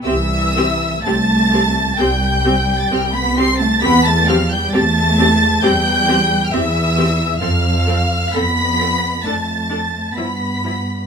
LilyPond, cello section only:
\new Staff \with { instrumentName = "Cello section" } { \time 4/4 \key c \major \tempo 4 = 66 e4 a4 g4~ g16 b16 c'16 a16 | b16 a16 f16 g16 a4 g4 e4 | f4 b4 a4 b4 | }